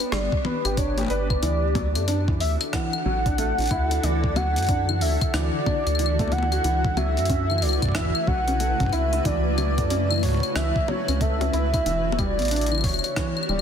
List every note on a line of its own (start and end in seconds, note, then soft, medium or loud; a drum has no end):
0.00 1.39 B3 medium
0.00 6.60 D4 medium
0.00 1.39 G4 medium
0.00 0.14 B4 loud
0.12 0.29 G1 medium
0.12 0.31 G3 loud
0.12 0.44 D5 loud
0.12 cross-stick loud
0.12 closed hi-hat medium
0.32 kick loud
0.45 0.54 B3 loud
0.45 0.79 B4 loud
0.45 high tom medium
0.65 1.06 G1 loud
0.65 0.71 G4 loud
0.65 closed hi-hat medium
0.65 claves medium
0.77 0.97 D4 loud
0.77 1.10 C#5 loud
0.77 kick loud
0.77 closed hi-hat medium
0.98 1.07 G4 medium
0.98 closed hi-hat soft
0.98 high tom soft
0.99 high tom soft
1.01 high tom soft
1.03 high tom medium
1.05 high tom medium
1.06 high tom medium
1.08 1.38 G1 medium
1.08 1.26 B4 loud
1.08 2.36 D5 loud
1.08 closed hi-hat soft
1.08 high tom medium
1.30 1.36 B4 medium
1.30 kick loud
1.30 claves medium
1.43 1.97 D2 loud
1.43 6.60 D3 medium
1.43 1.62 E3 loud
1.43 11.82 E4 medium
1.43 13.62 F#4 medium
1.43 6.60 A4 medium
1.43 closed hi-hat medium
1.75 1.85 F#3 loud
1.75 kick loud
1.75 closed hi-hat soft
1.75 high tom medium
1.95 2.42 F#2 medium
1.95 2.05 A3 medium
1.95 closed hi-hat medium
1.95 claves medium
2.08 2.23 D4 loud
2.08 closed hi-hat medium
2.28 2.38 E3 medium
2.28 kick loud
2.40 2.57 D2 medium
2.40 2.54 E5 loud
2.40 open hi-hat medium
2.61 closed hi-hat medium
2.61 claves medium
2.73 2.92 E3 loud
2.73 4.05 F#5 loud
2.73 kick loud
2.73 cross-stick loud
2.73 closed hi-hat medium
2.93 claves medium
3.06 3.52 A1 loud
3.06 3.15 F#3 loud
3.26 3.32 D4 loud
3.26 kick loud
3.26 closed hi-hat medium
3.38 3.57 A3 loud
3.38 closed hi-hat medium
3.58 3.69 A1 medium
3.58 3.68 D4 medium
3.58 closed hi-hat soft
3.60 closed hi-hat soft
3.62 closed hi-hat soft
3.64 closed hi-hat soft
3.66 closed hi-hat soft
3.67 closed hi-hat soft
3.69 3.99 D2 loud
3.69 3.87 E4 loud
3.69 kick loud
3.69 closed hi-hat soft
3.71 closed hi-hat soft
3.71 claves soft
3.91 3.97 E4 medium
3.91 closed hi-hat medium
4.03 4.58 D2 loud
4.03 4.23 E3 loud
4.03 4.38 D5 loud
4.03 closed hi-hat medium
4.24 kick loud
4.36 4.45 F#3 loud
4.36 5.03 F#5 loud
4.36 closed hi-hat soft
4.36 high tom medium
4.36 claves medium
4.56 5.03 F#2 medium
4.56 4.66 A3 medium
4.56 closed hi-hat soft
4.58 closed hi-hat soft
4.62 closed hi-hat soft
4.65 closed hi-hat soft
4.67 closed hi-hat soft
4.69 4.84 D4 loud
4.69 kick loud
4.69 closed hi-hat medium
4.89 4.99 E3 medium
4.89 claves medium
5.01 5.18 D2 medium
5.01 5.33 E5 loud
5.01 open hi-hat medium
5.21 kick loud
5.21 closed hi-hat medium
5.21 claves medium
5.34 5.50 D2 medium
5.34 5.53 E3 loud
5.34 6.33 D5 loud
5.34 cross-stick loud
5.34 closed hi-hat medium
5.66 5.76 D4 medium
5.66 kick loud
5.66 high tom medium
5.66 claves soft
5.87 6.28 D2 loud
5.87 closed hi-hat soft
5.87 claves soft
5.95 claves soft
5.99 6.18 E3 medium
5.99 closed hi-hat medium
6.06 claves medium
6.19 6.29 A3 loud
6.19 kick loud
6.19 closed hi-hat soft
6.19 high tom soft
6.21 high tom soft
6.28 high tom medium
6.32 6.60 D2 medium
6.32 6.48 E3 medium
6.32 6.98 F#5 loud
6.32 closed hi-hat soft
6.32 high tom medium
6.38 high tom medium
6.43 high tom medium
6.52 6.64 F#4 medium
6.52 closed hi-hat medium
6.52 claves medium
6.64 7.19 C#2 loud
6.64 11.82 C#3 medium
6.64 6.84 E3 loud
6.64 11.82 A3 medium
6.64 11.82 B4 medium
6.64 closed hi-hat medium
6.85 kick loud
6.97 7.06 F#3 loud
6.97 7.64 E5 loud
6.97 closed hi-hat soft
6.97 high tom medium
6.97 claves soft
7.17 7.64 F#2 medium
7.17 7.27 A3 medium
7.17 closed hi-hat soft
7.25 closed hi-hat soft
7.30 7.45 C#4 loud
7.30 kick loud
7.30 closed hi-hat medium
7.50 7.59 E3 medium
7.50 claves soft
7.51 claves soft
7.58 claves soft
7.62 7.79 C#2 medium
7.62 7.96 D5 loud
7.62 open hi-hat medium
7.62 claves medium
7.69 claves medium
7.73 claves medium
7.82 kick loud
7.82 closed hi-hat medium
7.82 claves medium
7.86 kick medium
7.89 kick medium
7.92 kick medium
7.92 cross-stick loud
7.92 closed hi-hat medium
7.95 8.14 E3 loud
7.95 8.29 E5 loud
7.95 kick medium
8.00 kick soft
8.05 kick soft
8.10 kick soft
8.15 claves medium
8.27 8.74 B1 loud
8.27 8.37 F#3 loud
8.27 8.94 F#5 loud
8.27 kick loud
8.48 8.53 C#4 loud
8.48 closed hi-hat soft
8.60 8.79 A3 loud
8.60 closed hi-hat medium
8.80 8.90 A1 medium
8.80 8.90 C#4 medium
8.80 kick loud
8.80 closed hi-hat soft
8.83 kick medium
8.86 kick medium
8.90 9.21 C#2 loud
8.90 9.08 E4 loud
8.90 9.25 E5 loud
8.90 kick medium
8.90 closed hi-hat soft
8.90 claves soft
9.13 9.19 E4 medium
9.13 closed hi-hat medium
9.25 9.80 C#2 loud
9.25 9.44 E3 loud
9.25 10.25 D5 loud
9.25 kick loud
9.25 closed hi-hat medium
9.58 9.67 F#3 loud
9.58 closed hi-hat soft
9.58 claves medium
9.78 10.24 F#2 medium
9.78 9.88 A3 medium
9.78 kick loud
9.78 closed hi-hat medium
9.90 10.06 C#4 loud
9.90 closed hi-hat medium
10.11 10.20 E3 medium
10.11 claves medium
10.12 claves medium
10.14 claves soft
10.21 10.39 C#2 medium
10.21 10.55 C#5 medium
10.21 kick soft
10.21 open hi-hat medium
10.21 claves soft
10.26 kick medium
10.29 kick medium
10.32 kick medium
10.35 kick medium
10.37 kick medium
10.40 kick medium
10.40 closed hi-hat medium
10.40 claves medium
10.56 10.72 C#2 medium
10.56 10.75 E3 loud
10.56 10.90 E5 loud
10.56 cross-stick loud
10.56 closed hi-hat medium
10.76 kick loud
10.88 10.98 F#3 loud
10.88 11.23 C#5 loud
10.88 high tom loud
11.08 11.50 C#2 loud
11.08 11.14 C#4 loud
11.08 closed hi-hat soft
11.08 claves medium
11.21 11.40 A3 loud
11.21 11.53 E5 loud
11.21 kick loud
11.21 closed hi-hat medium
11.41 11.51 C#4 medium
11.41 closed hi-hat soft
11.41 high tom medium
11.53 11.81 C#2 medium
11.53 11.69 E4 loud
11.53 12.20 E5 loud
11.53 closed hi-hat soft
11.74 11.79 E4 medium
11.74 kick loud
11.74 closed hi-hat medium
11.74 claves medium
11.86 12.40 E1 loud
11.86 12.05 E3 loud
11.86 13.62 E3 medium
11.86 13.62 B3 medium
11.86 13.62 D4 medium
11.86 13.62 G4 medium
11.86 closed hi-hat medium
12.12 high tom medium
12.19 12.28 G3 loud
12.19 12.85 D5 loud
12.19 kick loud
12.19 closed hi-hat soft
12.19 claves medium
12.39 12.85 A1 medium
12.39 12.49 B3 medium
12.39 closed hi-hat soft
12.42 closed hi-hat soft
12.45 closed hi-hat soft
12.48 closed hi-hat soft
12.51 12.67 D4 loud
12.51 closed hi-hat medium
12.56 closed hi-hat soft
12.61 closed hi-hat soft
12.66 closed hi-hat soft
12.71 12.81 E3 medium
12.71 claves soft
12.75 claves soft
12.78 claves soft
12.81 13.00 E1 medium
12.81 kick loud
12.81 open hi-hat medium
12.81 claves medium
12.84 13.49 C#5 loud
12.84 claves medium
12.89 claves medium
12.94 claves medium
12.99 claves medium
13.04 closed hi-hat medium
13.04 claves medium
13.16 13.36 E3 loud
13.16 kick loud
13.16 cross-stick loud
13.16 closed hi-hat medium
13.37 claves soft
13.43 claves soft
13.49 13.62 D1 loud
13.49 13.59 G3 loud
13.49 13.62 D5 loud
13.49 claves medium